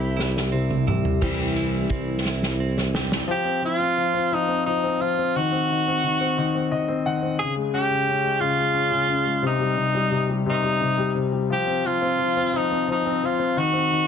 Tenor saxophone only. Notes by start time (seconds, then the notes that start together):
Already playing: E4
3.31 G4
3.65 F4
4.34 D#4
4.66 D#4
5.01 F4
5.36 F#4
7.39 G#4
7.74 G4
8.40 F4
9.46 D#4
10.50 D#4
11.52 G4
11.86 F4
12.56 D#4
12.91 D#4
13.25 F4
13.58 F#4